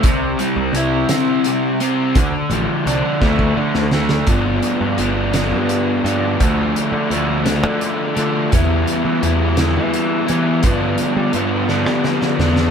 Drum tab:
HH |x-x-x-x-x-x-|x-x-x-------|x-x-x-x-x-x-|x-x-x-x-x-x-|
SD |------o-----|------o--ooo|------o-----|------o-----|
BD |o-----------|o-----oo----|o-----------|o-----------|

HH |x-x-x-x-x-x-|x-x-x-------|
SD |------o-----|------oooooo|
BD |o-----------|o-----------|